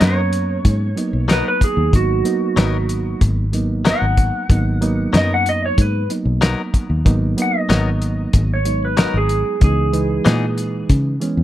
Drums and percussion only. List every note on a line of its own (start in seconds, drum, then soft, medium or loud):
0.01 snare loud
0.01 closed hi-hat medium
0.33 closed hi-hat medium
0.65 kick medium
0.65 closed hi-hat medium
0.97 closed hi-hat medium
1.29 snare medium
1.29 closed hi-hat medium
1.61 kick medium
1.61 closed hi-hat medium
1.93 kick loud
1.93 closed hi-hat medium
2.25 closed hi-hat medium
2.57 snare loud
2.57 closed hi-hat medium
2.89 closed hi-hat medium
3.21 kick medium
3.21 closed hi-hat medium
3.53 closed hi-hat medium
3.85 snare medium
3.85 closed hi-hat medium
4.17 kick medium
4.17 closed hi-hat medium
4.50 kick loud
4.50 closed hi-hat medium
4.82 closed hi-hat medium
5.14 snare loud
5.14 closed hi-hat medium
5.46 closed hi-hat medium
5.78 kick medium
5.78 closed hi-hat medium
6.10 closed hi-hat medium
6.42 snare medium
6.42 closed hi-hat medium
6.74 kick medium
6.74 closed hi-hat medium
7.06 kick loud
7.06 closed hi-hat medium
7.38 closed hi-hat medium
7.70 snare loud
7.70 closed hi-hat medium
8.02 closed hi-hat medium
8.33 kick medium
8.33 closed hi-hat medium
8.65 closed hi-hat medium
8.97 snare medium
8.97 closed hi-hat medium
9.29 closed hi-hat medium
9.61 kick loud
9.61 closed hi-hat medium
9.93 closed hi-hat medium
10.26 snare loud
10.26 closed hi-hat medium
10.58 closed hi-hat medium
10.89 kick medium
10.89 closed hi-hat medium
11.21 closed hi-hat medium